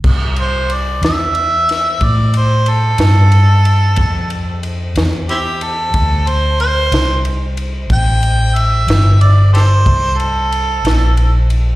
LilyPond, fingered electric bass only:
\new Staff \with { instrumentName = "Fingered electric bass" } { \clef bass \time 12/8 \key a \minor \tempo 4. = 61 c,4. e,4. a,4. g,4. | f,4. e,4. d,4. c,4. | a,,4. g,,4. c,4. bes,,4. | }